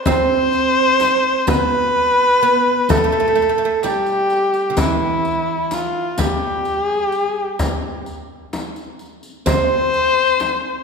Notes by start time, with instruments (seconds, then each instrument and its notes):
0.05 oud C4, kamancheh C5, riq, frame drum
0.53 riq
1.00 riq, frame drum
1.47 oud B3, kamancheh B4, riq, frame drum
2.41 oud B3, riq
2.89 oud A3, kamancheh A4, riq, frame drum
2.97 oud A3
3.04 oud A3
3.12 oud A3
3.20 oud A3
3.28 oud A3
3.35 oud A3, riq
3.42 oud A3
3.49 oud A3
3.58 oud A3
3.65 oud A3
3.83 oud G3, kamancheh G4, riq, frame drum
4.06 riq
4.30 riq
4.54 riq
4.70 oud D3
4.77 oud E3, kamancheh E4, riq, frame drum
5.25 riq
5.71 kamancheh F4, riq, frame drum
6.18 oud G3, kamancheh G4, riq, frame drum
6.65 riq
6.86 kamancheh G#4
7.04 kamancheh G4
7.12 riq
7.24 kamancheh G#4
7.42 kamancheh G4
7.59 riq, frame drum
8.06 riq
8.53 riq, frame drum
8.76 riq
8.99 riq
9.23 riq
9.46 oud C4, kamancheh C5, riq, frame drum
9.94 riq
10.40 riq, frame drum